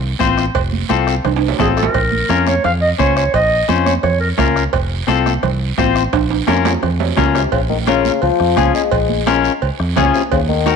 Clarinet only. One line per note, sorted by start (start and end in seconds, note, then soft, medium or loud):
1.60 1.68 G#4 medium
1.78 2.26 A#4 medium
2.30 2.46 A#4 medium
2.48 2.63 C#5 medium
2.65 2.73 F5 loud
2.81 2.89 D#5 loud
2.99 3.15 C#5 loud
3.17 3.33 C#5 medium
3.34 3.66 D#5 loud
3.85 3.93 C#5 medium
4.03 4.19 C#5 medium
4.21 4.28 A#4 medium
4.38 4.63 A#4 medium